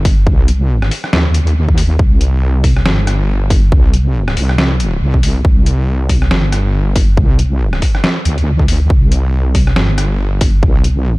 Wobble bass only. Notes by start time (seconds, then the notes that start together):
Already playing: G1
0.27 C2
1.13 D#2
1.99 C2
2.86 G1
3.72 C2
4.37 C2
5.02 C2
5.45 C2
6.31 G1
7.18 C2
8.26 D2
8.90 C2
9.76 G1
10.63 C2